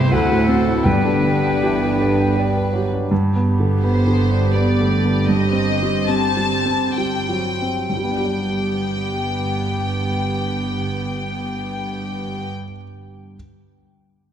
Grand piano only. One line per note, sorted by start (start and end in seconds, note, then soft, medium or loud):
0.00 0.11 C2 medium
0.00 0.14 G2 soft
0.00 0.15 C4 soft
0.00 0.13 E4 soft
0.00 0.15 G4 soft
0.00 0.14 E5 medium
0.12 0.83 D2 soft
0.12 0.82 A4 soft
0.12 0.81 F#5 medium
0.32 0.60 A2 soft
0.49 0.78 C4 soft
0.68 0.86 E4 soft
0.83 3.07 G2 soft
0.83 1.81 B4 soft
0.83 2.19 G5 medium
1.05 1.36 D3 soft
1.24 1.55 B3 soft
1.44 1.74 D4 soft
1.63 1.93 G4 soft
1.82 2.12 B4 soft
2.01 2.31 D5 soft
2.20 2.49 G5 soft
2.39 2.68 D5 soft
2.57 2.86 B4 soft
2.76 3.04 G4 soft
2.93 3.11 D4 soft
3.11 5.24 G2 soft
3.36 3.74 B3 soft
3.60 3.98 D3 soft
3.84 4.22 B3 soft
4.07 4.45 D3 soft
4.31 4.69 D4 soft
4.54 4.93 B3 soft
4.80 5.04 A3 soft
5.04 5.28 B3 soft
5.28 7.86 G2 soft
5.53 5.97 C4 soft
5.83 6.27 G3 soft
6.09 6.54 C4 soft
6.37 6.84 G3 soft
6.66 7.14 C4 soft
6.98 7.47 G3 soft
7.29 7.60 F#3 soft
7.62 7.91 C4 soft
7.90 12.48 G2 soft
7.97 12.55 G3 soft
8.04 12.62 B3 soft
8.11 12.70 D4 soft
8.18 12.76 G4 soft
8.25 12.83 D5 soft